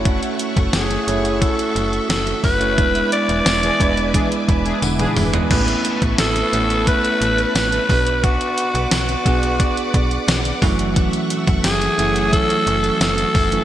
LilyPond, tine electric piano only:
\new Staff \with { instrumentName = "Tine electric piano" } { \time 4/4 \key fis \minor \tempo 4 = 88 << { r1 | r2 r8 b''16 gis''16 fis''8 e''8 | r1 | r1 |
r1 | } \\ { <a cis' e' fis' cis''>4 r8 <a cis' e' fis' cis''>4. r8. <a cis' e' fis' cis''>16 | <gis b d' e' b'>4 r8 <gis b d' e' b'>4. r8. <gis b d' e' b'>16 | <a b cis' e' b'>4 r8 <a b cis' e' b'>4. r8 <b d' fis'>8~ | <b d' fis'>4 r8 <b d' gis'>4. r8 <e fis a cis' fis'>8~ |
<e fis a cis' fis'>4 r8 <e fis a cis' gis''>4. r8. <e fis a cis' fis'>16 | } >> }